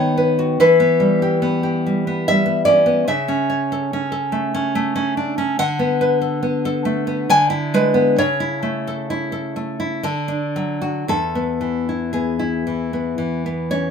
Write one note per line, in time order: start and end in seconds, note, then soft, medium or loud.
0.00 0.56 D#3 medium
0.00 0.59 B3 medium
0.00 0.55 C#5 loud
0.17 0.59 B4 medium
0.39 0.59 F#4 medium
0.60 3.03 E3 medium
0.60 2.22 B4 loud
0.80 1.41 B3 medium
1.00 1.85 G3 medium
1.22 1.62 G4 medium
1.42 2.06 B3 medium
1.63 2.45 G4 medium
1.86 2.27 G3 medium
2.07 2.44 B3 medium
2.28 3.08 G3 medium
2.28 2.65 E5 loud
2.46 2.85 B3 medium
2.65 3.06 C#4 medium
2.65 3.04 D5 loud
2.86 3.06 B3 medium
3.08 5.56 C#3 medium
3.08 5.56 E5 loud
3.28 3.92 C#4 medium
3.50 4.74 C#5 medium
3.72 4.11 A4 medium
3.93 4.53 C#4 medium
4.12 5.38 A4 medium
4.32 4.74 A3 medium
4.54 4.94 C#4 medium
4.75 5.60 A3 medium
4.96 5.17 C#4 medium
5.17 5.37 D4 medium
5.38 5.59 C#4 medium
5.59 7.25 D3 medium
5.59 7.25 F#5 loud
5.79 6.41 B3 medium
6.01 6.21 B4 medium
6.22 6.64 A4 medium
6.43 7.06 B3 medium
6.65 7.29 A4 medium
6.85 7.29 A3 medium
7.07 7.29 B3 medium
7.30 8.16 D3 loud
7.30 7.49 G#5 loud
7.50 8.18 E4 medium
7.74 8.18 G#3 medium
7.74 8.17 B4 loud
7.94 8.17 B3 medium
8.18 10.01 C#3 medium
8.18 10.01 C#5 loud
8.40 9.09 E4 medium
8.63 9.55 A3 medium
8.87 9.31 A4 medium
9.10 9.78 E4 medium
9.32 10.03 A4 medium
9.56 10.04 A3 medium
9.80 10.04 E4 medium
10.03 11.04 D3 medium
10.03 11.03 A4 loud
10.28 11.07 D4 medium
10.56 11.08 F#3 medium
10.81 11.08 F#4 medium
11.08 13.91 E2 medium
11.08 12.09 A4 loud
11.35 12.12 B3 medium
11.61 12.66 E3 medium
11.89 12.38 E4 medium
12.13 12.92 B3 medium
12.13 13.65 G#4 medium
12.39 13.91 E4 medium
12.67 13.17 E3 medium
12.93 13.45 B3 medium
13.18 13.91 E3 medium
13.46 13.71 B3 medium
13.71 13.91 C#4 soft
13.71 13.91 C#5 medium